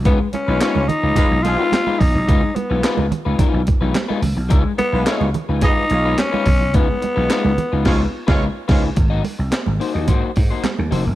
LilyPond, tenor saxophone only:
\new Staff \with { instrumentName = "Tenor saxophone" } { \time 4/4 \key des \major \tempo 4 = 108 ces'8 des'4 ees'4 f'4 ees'8~ | ees'8 ces'4 r2 r8 | r8 ces'4 r8 ees'4 des'4 | ces'2. r4 |
r1 | }